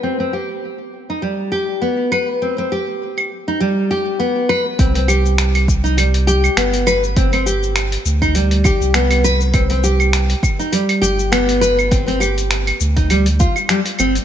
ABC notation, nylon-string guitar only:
X:1
M:4/4
L:1/16
Q:"Swing 16ths" 1/4=101
K:Cm
V:1 name="Nylon-string guitar"
C C G4 z E G,2 G2 =B,2 =B z | C C G4 z E G,2 G2 =B,2 =B z | C C G4 z E G,2 G2 =B,2 =B z | C C G4 z E G,2 G2 =B,2 =B z |
C C G4 z E G,2 G2 =B,2 =B z | C C G4 z E G, z F z G, z C z |]